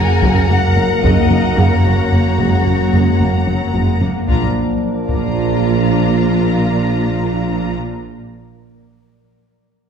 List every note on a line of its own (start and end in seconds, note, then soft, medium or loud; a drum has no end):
0.00 0.12 F#2 medium
0.00 3.97 F#3 medium
0.00 4.29 F#3 medium
0.00 3.97 A#3 medium
0.00 4.25 A#3 medium
0.00 0.12 F#4 medium
0.00 0.49 G#4 medium
0.00 2.02 A#4 medium
0.00 4.25 A#4 medium
0.00 4.08 F#5 medium
0.00 4.29 F#5 medium
0.00 0.49 G#5 medium
0.00 4.04 A#5 medium
0.22 0.33 F#1 medium
0.22 0.31 F#1 medium
0.22 0.38 F#2 medium
0.22 0.30 F#2 medium
0.22 0.48 C#3 medium
0.22 0.38 F#3 medium
0.22 taiko medium
0.49 0.60 F#1 soft
0.49 0.58 F#1 soft
0.49 0.66 F#2 medium
0.49 0.58 F#2 soft
0.49 0.66 A#3 medium
0.49 0.58 A#3 soft
0.49 1.03 F#4 medium
0.49 1.02 F#5 medium
0.76 0.87 F#1 soft
0.76 0.85 F#1 soft
0.76 0.85 F#2 soft
0.76 0.93 F#3 medium
0.76 0.85 F#3 soft
0.76 0.93 C#4 medium
1.03 1.14 F#1 medium
1.03 1.12 F#1 soft
1.03 1.19 F#2 medium
1.03 1.11 F#2 medium
1.03 1.29 C#3 soft
1.03 1.20 F#3 medium
1.03 1.57 D#4 medium
1.03 1.57 D#5 medium
1.03 taiko medium
1.30 1.41 F#1 soft
1.30 1.39 F#1 soft
1.30 1.38 F#2 soft
1.30 1.47 F#3 medium
1.30 1.39 A#3 soft
1.30 1.47 C#4 medium
1.56 1.68 F#1 medium
1.56 1.66 F#1 medium
1.56 1.65 F#2 soft
1.56 1.74 F#2 medium
1.56 1.82 C#3 medium
1.56 1.74 F#3 medium
1.56 3.73 C#4 medium
1.56 3.73 C#5 soft
1.84 1.96 F#1 soft
1.84 1.93 F#1 soft
1.84 1.92 F#2 soft
1.84 2.01 F#2 medium
1.84 2.01 A#3 medium
1.84 1.93 A#3 soft
2.11 2.22 F#1 soft
2.11 2.20 F#1 soft
2.11 2.20 F#2 soft
2.11 2.28 F#2 soft
2.11 2.37 A#3 soft
2.11 2.28 A#3 medium
2.38 2.49 F#1 soft
2.38 2.47 F#1 soft
2.38 2.46 F#2 soft
2.38 2.56 F#2 medium
2.38 2.55 F#3 medium
2.38 2.66 G#3 soft
2.65 2.76 F#1 soft
2.65 2.74 F#1 soft
2.65 2.74 F#2 soft
2.65 2.82 F#2 medium
2.65 2.93 F#3 soft
2.65 2.82 F#4 medium
2.92 3.04 F#1 medium
2.92 3.01 F#1 soft
2.92 3.01 F#2 soft
2.92 3.09 F#2 medium
2.92 3.09 F#3 medium
2.92 3.20 G#3 soft
3.19 3.28 F#1 soft
3.19 3.31 F#1 soft
3.19 3.28 F#2 soft
3.19 3.36 F#2 medium
3.19 3.36 A#3 medium
3.19 3.47 A#3 soft
3.47 3.58 F#1 soft
3.47 3.55 F#1 soft
3.47 3.55 F#2 soft
3.47 3.73 F#3 soft
3.47 3.63 F#3 soft
3.47 3.63 C#4 medium
3.74 3.85 F#1 soft
3.74 3.82 F#1 soft
3.74 3.82 F#2 soft
3.74 3.90 F#2 medium
3.74 3.90 F#3 medium
3.74 4.01 G#3 soft
4.00 4.09 F#1 soft
4.00 4.12 F#1 soft
4.00 4.08 F#2 soft
4.00 4.17 F#3 medium
4.00 4.28 A#3 soft
4.00 4.17 C#4 soft
4.27 4.44 A#1 soft
4.27 4.44 A#2 soft
4.27 7.74 F3 medium
4.27 7.74 F3 soft
4.27 7.74 A#3 medium
4.27 7.74 D4 soft
4.27 4.44 D4 soft
4.27 4.44 F4 soft
4.27 7.74 A#4 medium
4.27 7.74 D5 medium
4.27 4.44 A#5 soft
4.27 taiko soft
5.09 7.74 A#1 medium
5.09 7.74 A#1 soft
5.09 7.74 A#2 soft
5.09 7.74 D4 soft
5.09 7.74 F4 soft
5.09 7.74 A#5 soft
5.09 taiko soft